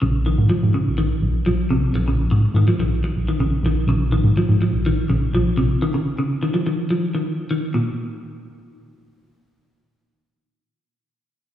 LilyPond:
<<
  \new Staff \with { instrumentName = "Clean electric guitar" } { \clef bass \time 4/4 \key bes \minor \tempo 4 = 124 des8 ees8 f8 des8 ees8 r8 f8 c8 | r16 des8 r8 ees16 f16 ees8 r8 ees16 des8 ees8 | des8 ees8 f8 f8 ees8 des8 f8 c8 | ees16 des8 des8 ees16 f16 ees8 f8 ees16 r8 ees8 |
bes,8 r2. r8 | r1 | }
  \new Staff \with { instrumentName = "Tine electric piano" } { \clef bass \time 4/4 \key bes \minor bes,,8. aes,16 r16 aes,16 r16 bes,,8 r16 bes,,16 r16 bes,,16 r16 bes,,16 r16 | bes,,8. aes,16 r16 aes,16 r16 bes,,8 r16 bes,,16 r16 bes,,16 r16 bes,,16 r16 | bes,,8. aes,16 r16 aes,16 r16 bes,,8 r16 bes,,16 r16 bes,,16 r16 bes,,16 r16 | r1 |
r1 | r1 | }
>>